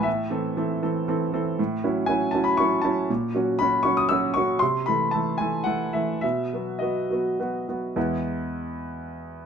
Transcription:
<<
  \new Staff \with { instrumentName = "Grand piano" } { \time 3/4 \key c \major \tempo 4 = 117 e''2~ e''8 r8 | \key e \major r4 gis''8 a''16 b''16 cis'''8 a''8 | r4 b''8 cis'''16 dis'''16 e'''8 cis'''8 | c'''8 b''8 a''8 gis''8 fis''8 e''8 |
e''4 dis''4 r4 | <e, gis b e'>2. | }
  \new Staff \with { instrumentName = "Grand piano" } { \time 3/4 \key c \major a,8 <e c' a'>8 <e c' a'>8 <e c' a'>8 <e c' a'>8 <e c' a'>8 | \key e \major a,8 <fis cis' e'>8 <fis cis' e'>8 <fis cis' e'>8 <fis cis' e'>8 <fis cis' e'>8 | ais,8 <fis cis' fis'>8 <fis cis' fis'>8 <fis cis' fis'>8 <fis cis' fis'>8 <fis cis' fis'>8 | c8 <e a a'>8 <e a a'>8 <e a a'>8 <e a a'>8 <e a a'>8 |
b,8 <fis b fis'>8 <fis b fis'>8 <fis b fis'>8 <fis b fis'>8 <fis b fis'>8 | r2. | }
>>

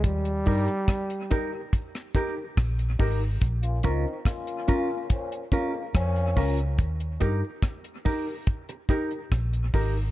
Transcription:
<<
  \new Staff \with { instrumentName = "Clean electric guitar" } { \time 4/4 \key ees \mixolydian \tempo 4 = 71 r8 <ees' g' bes'>8 r8 <ees' g' bes'>8 r8 <ees' g' bes'>8 r8 <ees' g' bes'>8 | r8 <des' f' bes'>8 r8 <des' f' bes'>8 r8 <des' f' bes'>8 r8 <des' f' bes'>8 | r8 <ees' g' bes'>8 r8 <ees' g' bes'>8 r8 <ees' g' bes'>8 r8 <ees' g' bes'>8 | }
  \new Staff \with { instrumentName = "Reed electric piano" } { \time 4/4 \key ees \mixolydian r8 <ees' g' bes'>16 r8. <ees' g' bes'>16 <g' bes'>16 r8 <ees' g' bes'>16 <g' bes'>16 r8 <ees' g' bes'>16 r16 | r8 <des' f' bes'>16 r8. <des' f' bes'>16 <f' bes'>16 r8 <des' f' bes'>16 <f' bes'>16 r8 <des' f' bes'>16 r16 | r8 <ees' g' bes'>16 r8. <ees' g' bes'>16 <g' bes'>16 r8 <ees' g' bes'>16 <g' bes'>16 r8 <ees' g' bes'>16 r16 | }
  \new Staff \with { instrumentName = "Trombone section" } { \clef bass \time 4/4 \key ees \mixolydian r1 | r16 <des bes f'>16 <ees c' ees'>8 <des bes f'>4 <bes, f des'>8 <f, des bes>8 <bes, f des'>8. r16 | r1 | }
  \new Staff \with { instrumentName = "Trombone" } { \clef bass \time 4/4 \key ees \mixolydian g2 r2 | r1 | r1 | }
  \new Staff \with { instrumentName = "Fingered electric bass" } { \clef bass \time 4/4 \key ees \mixolydian ees,8 g,16 r2 r16 bes,,8 aes,,8 | bes,,8 des,16 r2 r16 f,8 des,8 | ees,8 g,16 r2 r16 bes,,8 aes,,8 | }
  \new DrumStaff \with { instrumentName = "Drums" } \drummode { \time 4/4 <hh bd>16 hh16 <hho bd>16 hh16 <hh bd ss>16 hh16 <hh bd>8 <hh bd>16 <hh ss>16 <hh bd>8 <hh bd ss>16 hh16 <hho bd>8 | <hh bd>16 hh16 <hh bd>8 <hh bd ss>16 hh16 <hh bd>8 <hh bd>16 hh16 <hh bd>8 <hh bd ss>16 hh16 <hho bd>16 hh16 | <hh bd>16 hh16 <hh bd>8 <hh bd ss>16 hh16 <hho bd>8 <hh bd>16 hh16 <hh bd>16 hh16 <hh bd ss>16 hh16 <hho bd>8 | }
>>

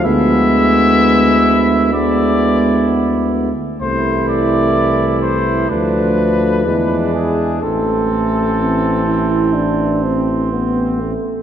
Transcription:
<<
  \new Staff \with { instrumentName = "Trumpet" } { \time 4/4 \key a \minor \tempo 4 = 63 e''2 d''4. r8 | c''8 d''4 c''8 b'4. gis'8 | a'2. r4 | }
  \new Staff \with { instrumentName = "Trumpet" } { \time 4/4 \key a \minor e'2 e'4. r8 | e'2 d'4 d'4 | c'2.~ c'8 r8 | }
  \new Staff \with { instrumentName = "French horn" } { \time 4/4 \key a \minor b2 b4. r8 | a2 a4 gis4 | a4 c'8 e'8 d'8 c'8 b8 a8 | }
  \new Staff \with { instrumentName = "Trombone" } { \clef bass \time 4/4 \key a \minor gis2 gis4. r8 | e2 f4 e4 | e2.~ e8 r8 | }
  \new Staff \with { instrumentName = "Bass trombone" } { \clef bass \time 4/4 \key a \minor d,2.~ d,8 r8 | c,2 d,4 e,4 | a,,2.~ a,,8 r8 | }
>>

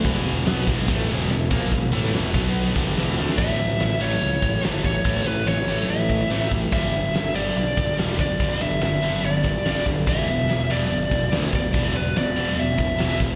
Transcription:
<<
  \new Staff \with { instrumentName = "Lead electric guitar" } { \time 4/4 \key e \dorian \tempo 4 = 144 r1 | r1 | e''4. cis''4. r8 cis''8~ | cis''8 b'8 cis''4 e''4. r8 |
e''4. d''4. r8 d''8~ | d''8 e''8 e''4 d''4. r8 | e''4. d''4. r8 d''8~ | d''8 b'8 d''4 e''4. r8 | }
  \new Staff \with { instrumentName = "Distorted electric guitar" } { \clef bass \time 4/4 \key e \dorian <e, b, e>4 <b, fis b>8 <e, b, e>8 <a, e a>8 <e, b, e>8 <e, b,>8 <ais, f ais>8 | <e, b,>8 <a, e a>8 <e, b, e>8 <b, fis b>4 <g, d g>8 <e, b, e>8 <d a d'>8 | <a, e a>8 <a, e>8 <a, e>8 <a, e a>8 <a, e>8 <a, e>8 <a, e a>8 <a, e>8 | <a, e a>8 <a, e>8 <a, e>8 <a, e a>8 <a, e>8 <a, e>8 <a, e a>8 <a, e>8 |
<g, d g>8 <g, d>8 <g, d>8 <g, d g>8 <g, d>8 <g, d>8 <g, d g>8 <g, d>8 | <g, d g>8 <g, d>8 <g, d>8 <g, d g>8 <g, d>8 <g, d>8 <g, d g>8 <g, d>8 | <e, b, e>8 <e, b,>8 <e, b,>8 <e, b, e>8 <e, b,>8 <e, b,>8 <e, b, e>8 <e, b,>8 | <e, b, e>8 <e, b,>8 <e, b,>8 <e, b, e>8 <e, b,>8 <e, b,>8 <e, b, e>8 <e, b,>8 | }
  \new Staff \with { instrumentName = "Picked electric bass" } { \clef bass \time 4/4 \key e \dorian e,,4 b,,8 e,,8 a,,8 e,,8 e,,8 ais,,8 | e,,8 a,,8 e,,8 b,,4 g,,8 e,,8 d,8 | a,,8 a,,8 a,,8 a,,8 cis,8 a,,8 g,,8 a,,8 | a,,8 a,,8 a,,8 a,,8 a,,4 a,,8 a,,8 |
g,,8 g,,8 g,,8 g,,8 b,,8 g,,8 e,,8 g,,8 | g,,8 g,,8 g,,8 g,,8 g,,4 g,,8 g,,8 | e,,8 e,,8 e,,8 e,,8 g,,8 e,,8 d,8 e,,8 | e,,8 e,,8 e,,8 e,,8 e,,4 e,,8 e,,8 | }
  \new DrumStaff \with { instrumentName = "Drums" } \drummode { \time 4/4 <bd cymr>8 cymr8 <cymr sn>8 <bd cymr>8 <bd cymr>8 cymr8 <cymr sn>8 <bd cymr>8 | <bd cymr>8 cymr8 <cymr sn>8 <bd cymr>8 cymr8 <bd cymr>8 sn8 sn16 sn16 | <hho bd>8 sn8 <hho sn>4 hho8 bd8 <hho sn>8 bd8 | <hho bd>4 <hho sn>4 hho8 bd8 <hho sn>8 bd8 |
<hho bd>4 <hho sn>4 hho8 bd8 <hho sn>8 bd8 | <hho bd>8 sn8 <hho sn>4 hho8 bd8 <hho sn>8 bd8 | <hho bd>8 sn8 <hho sn>4 hho8 bd8 <hho sn>8 bd8 | <hho bd>8 sn8 <hho sn>4 hho8 bd8 <hho sn>8 bd8 | }
>>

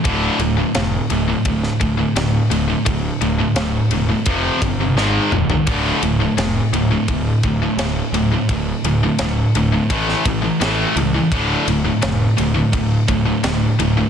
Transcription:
<<
  \new Staff \with { instrumentName = "Distorted electric guitar" } { \clef bass \time 4/4 \key d \minor \tempo 4 = 85 <d, a, d>8 <d, a,>16 <d, a,>16 <d, a,>8 <d, a,>16 <d, a,>16 <d, a,>8 <d, a,>16 <d, a,>16 <d, a,>8 <d, a,>16 <d, a,>16 | <d, a,>8 <d, a,>16 <d, a,>16 <d, a,>8 <d, a,>16 <d, a,>16 <f, c f>8 <f, c>16 <f, c>16 <gis, dis gis>8 <gis, dis>16 <gis, dis>16 | <d, a, d>8 <d, a,>16 <d, a,>16 <d, a,>8 <d, a,>16 <d, a,>16 <d, a,>8 <d, a,>16 <d, a,>16 <d, a,>8 <d, a,>16 <d, a,>16 | <d, a,>8 <d, a,>16 <d, a,>16 <d, a,>8 <d, a,>16 <d, a,>16 <a, e a>8 <a, e>16 <a, e>16 <a, e a>8 <a, e>16 <a, e>16 |
<d, a, d>8 <d, a,>16 <d, a,>16 <d, a,>8 <d, a,>16 <d, a,>16 <d, a,>8 <d, a,>16 <d, a,>16 <d, a,>8 <d, a,>16 <d, a,>16 | }
  \new Staff \with { instrumentName = "Distorted electric guitar" } { \clef bass \time 4/4 \key d \minor <d, a, d>8 <d, a,>16 <d, a,>16 <d, a,>8 <d, a,>16 <d, a,>16 <d, a,>8 <d, a,>16 <d, a,>16 <d, a,>8 <d, a,>16 <d, a,>16 | <d, a,>8 <d, a,>16 <d, a,>16 <d, a,>8 <d, a,>16 <d, a,>16 <f, c f>8 <f, c>16 <f, c>16 <gis, dis gis>8 <gis, dis>16 <gis, dis>16 | <d, a, d>8 <d, a,>16 <d, a,>16 <d, a,>8 <d, a,>16 <d, a,>16 <d, a,>8 <d, a,>16 <d, a,>16 <d, a,>8 <d, a,>16 <d, a,>16 | <d, a,>8 <d, a,>16 <d, a,>16 <d, a,>8 <d, a,>16 <d, a,>16 <a, e a>8 <a, e>16 <a, e>16 <a, e a>8 <a, e>16 <a, e>16 |
<d, a, d>8 <d, a,>16 <d, a,>16 <d, a,>8 <d, a,>16 <d, a,>16 <d, a,>8 <d, a,>16 <d, a,>16 <d, a,>8 <d, a,>16 <d, a,>16 | }
  \new Staff \with { instrumentName = "Picked electric bass" } { \clef bass \time 4/4 \key d \minor d,,8 d,,8 f,,8 d,,8 d,,8 d,,8 d,,8 d,,8 | d,,8 d,,8 d,,8 e,,8 f,,8 g,,8 gis,,8 dis,,8 | d,,8 d,,8 f,,8 d,,8 d,,8 d,,8 d,,8 d,,8 | d,,8 d,,8 d,,8 d,,8 a,,8 a,,8 a,,8 cis,8 |
d,,8 d,,8 f,,8 d,,8 d,,8 d,,8 d,,8 d,,8 | }
  \new DrumStaff \with { instrumentName = "Drums" } \drummode { \time 4/4 <bd cymr>8 cymr8 <cymr sn>8 cymr8 <bd cymr>16 sn16 <bd cymr>8 <cymr sn>8 cymr8 | <bd cymr>8 cymr8 <cymr sn>8 cymr8 <bd cymr>8 <bd cymr>8 sn8 toml16 tomfh16 | <bd cymr>8 cymr8 <cymr sn>8 cymr8 <bd cymr>8 <bd cymr>8 <cymr sn>8 cymr8 | <bd cymr>8 cymr8 <cymr sn>8 cymr8 <bd cymr>16 sn16 <bd cymr>8 <cymr sn>8 cymr8 |
<bd cymr>8 cymr8 <cymr sn>8 cymr8 <bd cymr>8 <bd cymr>8 <cymr sn>8 cymr8 | }
>>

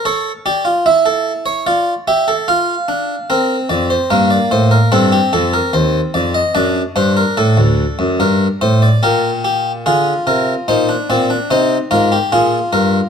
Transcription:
<<
  \new Staff \with { instrumentName = "Harpsichord" } { \time 4/4 \key g \minor \tempo 4 = 73 << { cis''8 d''8 e''16 a'8 cis''16 d''8 e''8 f''4 | bes'8 d''16 c''16 bes'16 d''16 c''16 bes'16 a'16 g'16 a'16 bes'16 c''8 d''16 ees''16 | d''8 c''16 bes'16 a'4 bes'8 c''16 d''16 bes'8 g'8 | \key bes \mixolydian aes'8 bes'8 c''8 d''8 c''8 bes'8 aes'8 bes'8 | } \\ { a'8 g'16 f'16 e'4 f'8 g'16 a'16 f'8 d'8 | c'4 bes4 c'2 | d'8 d'2~ d'8 g'4 | f'4 ees'16 d'16 c'16 d'16 ees'8 f'16 g'16 f'4 | } >> }
  \new Staff \with { instrumentName = "Harpsichord" } { \clef bass \time 4/4 \key g \minor r1 | r8 f,8 g,8 a,8 g,8 f,8 ees,8 f,8 | fis,8 g,8 a,16 d,8 fis,16 g,8 a,8 bes,4 | \key bes \mixolydian d8 c8 bes,8 bes,8 c8 aes,8 bes,8 g,8 | }
>>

